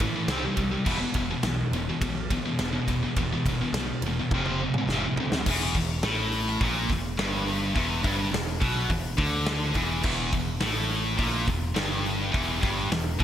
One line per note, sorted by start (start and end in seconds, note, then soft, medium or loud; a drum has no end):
0.00 0.15 A2 medium
0.00 0.15 E3 medium
0.00 kick medium
0.00 ride medium
0.16 0.29 A2 medium
0.16 0.30 E3 medium
0.28 0.46 C2 loud
0.28 0.42 C3 medium
0.28 0.42 G3 medium
0.28 0.42 C4 loud
0.28 snare loud
0.28 ride loud
0.44 0.56 C3 medium
0.44 0.56 G3 medium
0.57 0.75 C2 loud
0.57 0.71 C3 medium
0.57 0.70 G3 medium
0.57 kick medium
0.57 ride medium
0.72 0.86 C3 medium
0.72 0.86 G3 medium
0.86 1.04 E1 medium
0.86 0.99 E2 medium
0.86 0.99 B2 loud
0.86 0.99 E3 loud
0.86 kick loud
0.86 crash medium
1.00 1.15 E2 medium
1.00 1.15 B2 medium
1.14 1.33 E1 medium
1.14 1.30 E2 medium
1.14 1.29 B2 medium
1.14 kick medium
1.14 ride medium
1.31 1.44 E2 medium
1.31 1.44 B2 medium
1.43 1.62 B1 medium
1.43 1.70 E2 loud
1.43 1.71 B2 loud
1.43 snare loud
1.43 ride loud
1.71 1.90 E1 medium
1.71 1.88 E2 medium
1.71 1.88 B2 medium
1.71 ride medium
1.89 2.01 E2 medium
1.89 2.02 B2 medium
2.01 2.37 B1 medium
2.01 2.28 E2 medium
2.01 2.28 B2 loud
2.01 kick loud
2.01 ride loud
2.30 2.45 E2 medium
2.30 2.44 B2 medium
2.30 kick medium
2.30 ride medium
2.45 2.58 E2 medium
2.45 2.59 B2 medium
2.59 2.77 E1 medium
2.59 2.73 E2 medium
2.59 2.72 B2 medium
2.59 snare loud
2.59 ride loud
2.73 2.88 E2 medium
2.73 2.88 B2 medium
2.87 3.05 E1 loud
2.87 3.03 E2 medium
2.87 3.02 B2 medium
2.87 kick medium
2.87 snare soft
2.87 ride medium
3.03 3.17 E2 medium
3.03 3.17 B2 medium
3.16 3.34 E1 loud
3.16 3.32 E2 medium
3.16 3.31 B2 medium
3.16 kick loud
3.16 ride loud
3.32 3.46 E2 medium
3.32 3.46 B2 medium
3.45 3.63 E1 medium
3.45 3.61 E2 medium
3.45 3.60 B2 medium
3.45 kick medium
3.45 ride medium
3.61 3.75 E2 medium
3.61 3.75 B2 medium
3.73 3.91 B1 loud
3.73 snare loud
3.73 ride loud
3.77 4.02 E2 medium
3.77 4.02 B2 loud
4.01 4.20 E1 loud
4.01 ride medium
4.06 4.19 E2 medium
4.06 4.18 B2 medium
4.19 4.33 E2 medium
4.19 4.33 B2 medium
4.31 4.67 F1 loud
4.31 4.59 F2 medium
4.31 4.60 C3 loud
4.31 4.60 F3 loud
4.31 kick loud
4.31 high tom medium
4.46 high tom medium
4.63 4.76 F2 medium
4.63 4.76 C3 medium
4.74 4.90 F2 medium
4.74 4.90 C3 medium
4.74 mid tom medium
4.87 5.06 F1 loud
4.87 snare medium
4.92 5.03 F2 medium
4.92 5.03 C3 medium
4.92 5.04 F3 loud
5.06 5.19 F2 medium
5.06 5.19 C3 medium
5.16 5.35 D2 medium
5.16 5.33 F2 medium
5.16 5.33 C3 medium
5.16 floor tom medium
5.32 5.47 F2 medium
5.32 5.48 C3 medium
5.32 snare loud
5.46 5.73 E1 medium
5.46 5.75 E2 loud
5.46 kick loud
5.46 crash loud
5.75 6.01 E1 medium
5.75 5.99 E2 medium
5.75 kick medium
5.75 open hi-hat medium
6.02 6.56 A1 loud
6.02 6.60 A2 loud
6.02 snare loud
6.02 open hi-hat medium
6.32 open hi-hat medium
6.47 snare soft
6.61 6.88 A#1 medium
6.61 6.89 A#2 loud
6.61 kick loud
6.61 open hi-hat medium
6.90 7.16 E1 medium
6.90 7.13 E2 medium
6.90 kick medium
6.90 snare soft
6.90 open hi-hat medium
7.19 7.72 G1 medium
7.19 7.75 G2 loud
7.19 snare loud
7.19 open hi-hat medium
7.48 open hi-hat medium
7.75 8.02 E1 loud
7.75 8.03 E2 loud
7.75 kick loud
7.75 open hi-hat medium
8.03 8.31 G1 medium
8.03 8.31 G2 loud
8.03 kick loud
8.03 open hi-hat medium
8.32 8.60 E1 medium
8.32 8.55 E2 medium
8.32 snare loud
8.32 open hi-hat medium
8.61 8.88 B1 loud
8.61 8.89 B2 loud
8.61 kick loud
8.61 open hi-hat medium
8.89 9.17 E1 medium
8.89 9.13 E2 medium
8.89 kick loud
8.89 open hi-hat medium
9.17 9.72 D2 medium
9.17 9.75 D3 loud
9.17 kick loud
9.17 open hi-hat medium
9.46 snare loud
9.46 open hi-hat medium
9.74 10.02 E1 loud
9.74 10.02 E2 loud
9.74 kick loud
9.74 open hi-hat medium
10.03 10.31 E1 loud
10.03 10.32 E2 loud
10.03 kick loud
10.03 crash loud
10.32 10.60 E1 medium
10.32 10.57 E2 medium
10.32 kick loud
10.32 open hi-hat medium
10.61 11.15 A1 loud
10.61 11.17 A2 loud
10.61 snare loud
10.61 open hi-hat loud
10.89 open hi-hat medium
11.18 11.46 A#1 medium
11.18 11.47 A#2 loud
11.18 kick loud
11.18 open hi-hat loud
11.47 11.75 E1 medium
11.47 11.70 E2 medium
11.47 kick medium
11.47 snare soft
11.47 open hi-hat medium
11.74 12.30 G1 medium
11.74 12.31 G2 loud
11.74 snare loud
11.74 open hi-hat medium
12.05 open hi-hat medium
12.32 12.61 E1 loud
12.32 12.61 E2 loud
12.32 kick loud
12.32 open hi-hat medium
12.61 12.89 G1 medium
12.61 12.90 G2 loud
12.61 kick loud
12.61 open hi-hat medium
12.90 13.17 E1 medium
12.90 13.15 E2 medium
12.90 snare loud
12.90 open hi-hat medium
13.19 13.24 B1 loud
13.19 13.24 B2 loud
13.19 kick loud
13.19 open hi-hat medium